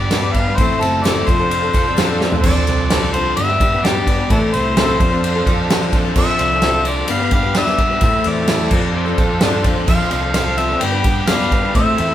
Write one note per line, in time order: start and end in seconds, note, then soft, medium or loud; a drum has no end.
0.00 0.59 G2 medium
0.00 0.12 G3 medium
0.00 0.12 B3 medium
0.00 0.57 B3 medium
0.00 0.13 D4 medium
0.00 0.57 D4 medium
0.00 0.57 G4 medium
0.00 0.58 G4 medium
0.00 0.14 B4 medium
0.00 0.58 B4 medium
0.00 0.34 D5 loud
0.11 0.53 G2 medium
0.11 0.36 G2 loud
0.11 0.36 D3 medium
0.11 0.35 G3 medium
0.11 0.36 B3 loud
0.11 0.36 D4 loud
0.11 snare loud
0.11 ride loud
0.11 tambourine medium
0.15 0.37 B4 loud
0.33 0.47 G3 medium
0.33 0.58 F5 loud
0.33 kick medium
0.33 ride medium
0.37 0.48 B3 medium
0.37 0.47 D4 medium
0.37 0.46 B4 medium
0.48 0.60 G3 soft
0.48 0.60 B3 medium
0.48 0.59 D4 medium
0.48 0.59 B4 medium
0.57 0.69 A1 loud
0.57 0.82 A2 medium
0.57 0.82 E3 medium
0.57 0.81 A3 medium
0.57 1.28 C4 medium
0.57 0.82 C4 medium
0.57 1.28 E4 medium
0.57 1.27 A4 medium
0.57 0.82 C5 loud
0.57 1.27 C5 medium
0.57 kick loud
0.57 ride loud
0.57 tambourine medium
0.61 0.83 E4 medium
0.61 0.83 A4 medium
0.69 tambourine soft
0.81 1.23 F#1 loud
0.81 1.05 A3 medium
0.81 1.05 C4 medium
0.81 1.04 A4 medium
0.81 ride medium
0.81 tambourine medium
0.85 1.06 E4 medium
0.85 1.06 A4 medium
1.03 1.29 A2 medium
1.03 1.29 E3 medium
1.03 1.29 A3 medium
1.03 1.29 C4 medium
1.03 1.28 D5 loud
1.03 snare loud
1.03 ride loud
1.03 tambourine loud
1.07 1.30 E4 loud
1.07 1.29 A4 loud
1.27 1.69 F1 loud
1.27 1.40 F3 medium
1.27 1.41 C4 medium
1.27 2.43 D4 medium
1.27 1.40 D4 medium
1.27 2.43 F4 medium
1.27 2.43 A4 medium
1.27 2.21 C5 loud
1.27 2.43 C5 medium
1.27 kick loud
1.27 ride medium
1.27 tambourine medium
1.32 1.38 A4 medium
1.39 1.63 D4 medium
1.39 1.61 A4 medium
1.39 tambourine soft
1.43 1.64 C4 soft
1.49 2.20 C4 medium
1.49 ride loud
1.49 tambourine soft
1.61 1.74 C4 soft
1.61 1.75 D4 medium
1.61 1.75 A4 medium
1.61 tambourine soft
1.73 1.95 F1 medium
1.73 1.86 F3 medium
1.73 1.87 C4 medium
1.73 1.87 D4 medium
1.73 1.85 A4 medium
1.73 kick loud
1.73 ride medium
1.73 tambourine medium
1.86 1.97 C4 soft
1.86 1.98 D4 soft
1.86 1.98 A4 soft
1.97 2.39 F2 loud
1.97 2.19 F3 loud
1.97 2.21 C4 medium
1.97 2.22 D4 loud
1.97 2.22 A4 loud
1.97 snare loud
1.97 ride loud
1.97 tambourine loud
2.21 2.33 F3 medium
2.21 2.33 C4 medium
2.21 2.34 D4 medium
2.21 2.32 A4 medium
2.21 snare medium
2.32 2.45 D4 medium
2.32 2.45 A4 medium
2.32 floor tom loud
2.32 tambourine soft
2.36 2.45 C4 soft
2.42 2.54 F2 loud
2.42 2.66 F3 medium
2.42 3.37 D4 medium
2.42 3.37 F4 medium
2.42 3.37 A4 medium
2.42 3.37 C5 medium
2.42 3.09 D5 loud
2.42 kick loud
2.42 crash loud
2.46 2.68 C4 medium
2.46 2.68 D4 medium
2.46 2.69 A4 medium
2.67 3.29 C2 loud
2.67 2.90 F3 medium
2.67 2.90 C4 medium
2.67 2.91 D4 medium
2.67 2.92 A4 medium
2.67 ride medium
2.90 3.13 F3 medium
2.90 3.14 C4 loud
2.90 3.15 D4 medium
2.90 3.15 A4 medium
2.90 snare loud
2.90 ride loud
3.12 3.37 F3 medium
3.12 3.38 C4 medium
3.12 3.35 C5 loud
3.12 ride medium
3.17 3.38 D4 medium
3.17 3.39 A4 medium
3.36 3.58 G2 loud
3.36 3.49 G2 medium
3.36 3.50 D3 medium
3.36 3.50 G3 medium
3.36 4.30 B3 medium
3.36 3.50 B3 medium
3.36 4.30 D4 medium
3.36 3.50 D4 medium
3.36 4.30 G4 medium
3.36 3.48 G4 medium
3.36 4.30 B4 medium
3.36 3.85 E5 loud
3.36 ride loud
3.49 3.59 G3 soft
3.49 3.61 B3 medium
3.49 3.61 D4 soft
3.49 3.61 G4 medium
3.60 3.81 G2 medium
3.60 3.72 G3 medium
3.60 3.73 B3 medium
3.60 3.72 D4 medium
3.60 3.71 G4 medium
3.60 kick loud
3.60 ride loud
3.72 3.84 G3 soft
3.72 3.85 B3 soft
3.72 3.85 D4 soft
3.72 3.84 G4 medium
3.84 4.07 G2 medium
3.84 4.25 G2 medium
3.84 4.08 D3 loud
3.84 4.05 G3 loud
3.84 4.07 B3 loud
3.84 4.08 D4 medium
3.84 4.08 G4 loud
3.84 4.30 D5 loud
3.84 snare loud
3.84 ride loud
4.06 4.18 G3 medium
4.06 4.19 B3 medium
4.06 4.18 D4 medium
4.06 4.17 G4 medium
4.06 kick medium
4.06 ride medium
4.18 4.30 G3 soft
4.18 4.30 B3 soft
4.18 4.31 D4 medium
4.18 4.30 G4 medium
4.29 4.53 A2 medium
4.29 4.41 A2 loud
4.29 4.53 E3 medium
4.29 4.51 A3 medium
4.29 4.52 C4 medium
4.29 4.99 C4 medium
4.29 4.99 E4 medium
4.29 4.53 E4 medium
4.29 4.98 A4 medium
4.29 4.54 A4 medium
4.29 4.38 A4 medium
4.29 4.40 B4 medium
4.29 4.98 C5 medium
4.29 4.55 D5 medium
4.29 kick loud
4.29 ride medium
4.52 4.95 C2 medium
4.52 4.76 A3 medium
4.52 4.77 C4 medium
4.52 4.77 E4 medium
4.52 4.77 A4 medium
4.52 5.46 C5 medium
4.52 ride medium
4.76 5.00 A2 medium
4.76 5.00 E3 medium
4.76 4.99 A3 medium
4.76 4.99 C4 medium
4.76 5.01 E4 medium
4.76 5.01 A4 medium
4.76 snare loud
4.76 ride loud
4.99 5.41 F2 loud
4.99 5.11 F3 medium
4.99 5.12 C4 medium
4.99 6.14 D4 medium
4.99 5.12 D4 medium
4.99 6.14 F4 medium
4.99 6.14 A4 medium
4.99 5.11 A4 medium
4.99 6.14 C5 medium
4.99 kick loud
4.99 ride medium
5.12 5.36 C4 medium
5.12 5.36 D4 medium
5.12 5.35 A4 medium
5.24 5.92 C4 medium
5.24 ride loud
5.36 5.46 C4 medium
5.36 5.47 D4 medium
5.36 5.47 A4 medium
5.45 5.67 F2 medium
5.45 5.68 F3 medium
5.45 5.69 C4 medium
5.45 5.70 D4 medium
5.45 5.70 A4 medium
5.45 kick loud
5.45 ride medium
5.70 6.11 F3 loud
5.70 5.91 F3 loud
5.70 5.91 C4 loud
5.70 5.93 D4 loud
5.70 5.94 A4 loud
5.70 snare loud
5.70 ride loud
5.92 6.04 F3 medium
5.92 6.04 C4 medium
5.92 6.05 D4 medium
5.92 6.03 A4 medium
5.92 kick loud
5.92 ride medium
6.04 6.15 C4 soft
6.04 6.15 D4 medium
6.04 6.16 A4 medium
6.15 6.26 F2 loud
6.15 6.37 F3 medium
6.15 6.39 C4 medium
6.15 7.06 D4 medium
6.15 6.39 D4 medium
6.15 7.08 F4 medium
6.15 7.08 A4 medium
6.15 6.40 A4 medium
6.15 7.08 C5 medium
6.15 6.90 E5 loud
6.15 kick loud
6.15 crash loud
6.39 7.01 C2 medium
6.39 6.60 F3 medium
6.39 6.61 C4 medium
6.39 6.62 D4 medium
6.39 6.62 A4 medium
6.39 ride medium
6.61 6.84 F3 medium
6.61 6.86 C4 medium
6.61 6.86 D4 medium
6.61 6.86 A4 loud
6.61 snare loud
6.61 ride loud
6.85 7.08 F3 medium
6.85 7.08 C4 medium
6.85 7.08 D4 medium
6.85 7.09 A4 medium
6.85 7.13 D5 loud
6.85 ride medium
7.07 7.20 G2 medium
7.07 7.30 G2 loud
7.07 7.20 D3 medium
7.07 7.20 G3 medium
7.07 8.00 B3 medium
7.07 7.20 B3 medium
7.07 8.00 D4 medium
7.07 7.20 D4 medium
7.07 8.00 G4 medium
7.07 8.01 B4 medium
7.07 7.19 B4 medium
7.07 ride loud
7.11 7.33 F5 loud
7.20 7.31 G3 soft
7.20 7.32 B3 medium
7.20 7.32 D4 medium
7.20 7.32 B4 medium
7.31 7.53 G2 medium
7.31 7.44 G3 medium
7.31 7.44 B3 medium
7.31 7.43 D4 medium
7.31 8.02 G4 medium
7.31 7.42 B4 medium
7.31 kick loud
7.31 ride medium
7.35 7.60 F5 loud
7.43 7.55 G3 soft
7.43 7.56 B3 soft
7.43 7.56 D4 medium
7.43 7.55 B4 medium
7.55 7.79 G2 medium
7.55 7.79 D3 medium
7.55 7.97 G3 loud
7.55 7.78 G3 medium
7.55 7.79 B3 medium
7.55 7.80 D4 loud
7.55 7.80 B4 loud
7.55 8.03 E5 loud
7.55 snare loud
7.55 ride loud
7.66 snare soft
7.78 7.90 G3 medium
7.78 7.91 B3 medium
7.78 7.90 D4 medium
7.78 7.89 B4 medium
7.78 kick medium
7.78 ride medium
7.91 8.02 G3 soft
7.91 8.03 B3 medium
7.91 8.02 D4 medium
7.91 8.02 B4 medium
8.01 8.25 A2 medium
8.01 8.12 A2 loud
8.01 8.25 E3 medium
8.01 8.24 A3 medium
8.01 8.71 C4 medium
8.01 8.25 C4 medium
8.01 8.71 E4 medium
8.01 8.26 E4 medium
8.01 8.69 A4 medium
8.01 8.26 A4 medium
8.01 8.69 C5 medium
8.01 8.29 E5 loud
8.01 kick loud
8.01 ride loud
8.24 8.66 E2 loud
8.24 8.48 A3 medium
8.24 8.48 C4 medium
8.24 8.49 E4 medium
8.24 8.50 A4 medium
8.24 9.20 D5 medium
8.24 ride medium
8.48 8.72 A2 medium
8.48 8.72 E3 medium
8.48 8.70 A3 medium
8.48 8.70 C4 medium
8.48 8.72 E4 loud
8.48 8.72 A4 medium
8.48 snare loud
8.48 ride loud
8.70 9.13 F2 loud
8.70 9.06 F3 medium
8.70 9.07 C4 medium
8.70 9.86 D4 medium
8.70 9.06 D4 medium
8.70 9.87 F4 medium
8.70 9.87 A4 medium
8.70 9.05 A4 medium
8.70 9.86 C5 medium
8.70 kick loud
8.70 crash loud
8.95 9.62 C4 medium
9.06 9.18 C4 medium
9.06 9.18 D4 medium
9.06 9.18 A4 medium
9.18 9.39 F2 medium
9.18 9.40 F3 medium
9.18 9.41 C4 medium
9.18 9.42 D4 medium
9.18 9.42 A4 medium
9.18 kick loud
9.18 ride medium
9.41 9.63 G2 loud
9.41 9.63 F3 medium
9.41 9.65 C4 loud
9.41 9.65 D4 loud
9.41 9.66 A4 loud
9.41 snare loud
9.41 ride loud
9.64 9.86 F2 medium
9.64 9.76 F3 medium
9.64 9.77 C4 medium
9.64 9.76 D4 medium
9.64 9.74 A4 medium
9.64 kick loud
9.64 ride medium
9.75 9.87 D4 soft
9.75 9.87 A4 medium
9.79 9.86 C4 soft
9.87 9.98 F2 loud
9.87 10.09 F3 medium
9.87 10.10 C4 medium
9.87 10.11 D4 medium
9.87 10.79 D4 medium
9.87 10.80 F4 medium
9.87 10.81 A4 medium
9.87 10.12 A4 medium
9.87 10.81 C5 medium
9.87 10.59 F5 loud
9.87 kick loud
9.87 crash medium
9.87 tambourine medium
10.10 10.73 C2 medium
10.10 10.32 F3 medium
10.10 10.34 C4 medium
10.10 10.35 D4 medium
10.10 10.35 A4 medium
10.10 ride medium
10.10 tambourine medium
10.34 10.56 F3 medium
10.34 10.57 C4 medium
10.34 10.58 D4 medium
10.34 10.59 A4 medium
10.34 snare loud
10.34 ride loud
10.34 tambourine loud
10.57 10.69 F3 medium
10.57 10.70 C4 medium
10.57 10.70 D4 medium
10.57 10.68 A4 medium
10.57 10.83 E5 loud
10.57 ride medium
10.57 tambourine medium
10.69 10.81 C4 medium
10.69 10.81 D4 medium
10.69 10.81 A4 medium
10.69 tambourine soft
10.80 10.92 G2 medium
10.80 11.02 G2 loud
10.80 10.93 D3 medium
10.80 10.93 G3 medium
10.80 11.73 B3 medium
10.80 10.93 B3 medium
10.80 11.73 D4 medium
10.80 10.92 D4 medium
10.80 11.73 G4 medium
10.80 11.73 B4 medium
10.80 10.91 B4 medium
10.80 11.31 G5 loud
10.80 ride loud
10.92 11.02 G3 soft
10.92 11.04 B3 soft
10.92 11.05 D4 medium
10.92 11.04 B4 medium
11.04 11.25 G2 medium
11.04 11.27 G3 medium
11.04 11.28 B3 medium
11.04 11.29 D4 medium
11.04 11.74 G4 medium
11.04 11.29 B4 medium
11.04 kick loud
11.04 ride medium
11.27 11.51 G2 medium
11.27 11.52 D3 medium
11.27 11.70 G3 loud
11.27 11.50 G3 medium
11.27 11.51 B3 medium
11.27 11.52 D4 loud
11.27 11.52 B4 medium
11.27 11.75 F5 loud
11.27 snare loud
11.27 ride loud
11.27 tambourine medium
11.40 snare soft
11.51 11.63 G3 medium
11.51 11.63 B3 medium
11.51 11.62 D4 medium
11.51 11.61 B4 medium
11.51 kick loud
11.51 ride medium
11.62 11.75 G3 soft
11.62 11.75 B3 medium
11.62 11.75 D4 soft
11.62 11.74 B4 medium
11.74 11.98 A2 medium
11.74 11.85 A2 loud
11.74 11.98 E3 medium
11.74 11.97 A3 medium
11.74 12.14 C4 medium
11.74 11.98 C4 medium
11.74 12.14 E4 medium
11.74 11.98 E4 medium
11.74 12.14 A4 medium
11.74 11.99 A4 medium
11.74 12.14 C5 medium
11.74 12.14 E5 loud
11.74 kick loud
11.74 ride medium
11.74 tambourine medium
11.98 12.14 E2 medium
11.98 12.14 A3 medium
11.98 12.14 C4 medium
11.98 12.14 E4 medium
11.98 12.14 A4 medium
11.98 ride medium